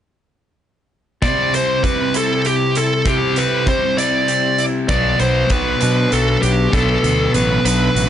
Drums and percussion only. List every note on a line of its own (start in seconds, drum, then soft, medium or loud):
1.22 kick medium
1.22 closed hi-hat medium
1.54 closed hi-hat soft
1.84 kick medium
1.84 closed hi-hat soft
2.14 closed hi-hat medium
2.45 closed hi-hat medium
2.75 closed hi-hat medium
3.06 kick medium
3.06 closed hi-hat medium
3.36 closed hi-hat soft
3.67 kick medium
3.67 closed hi-hat soft
3.98 closed hi-hat medium
4.28 closed hi-hat soft
4.58 closed hi-hat soft
4.89 kick medium
4.89 closed hi-hat medium
5.19 closed hi-hat soft
5.50 kick medium
5.50 closed hi-hat soft
5.81 closed hi-hat medium
6.12 closed hi-hat soft
6.43 closed hi-hat soft
6.73 kick medium
6.73 closed hi-hat medium
7.04 closed hi-hat soft
7.34 closed hi-hat medium
7.65 closed hi-hat medium
7.96 closed hi-hat medium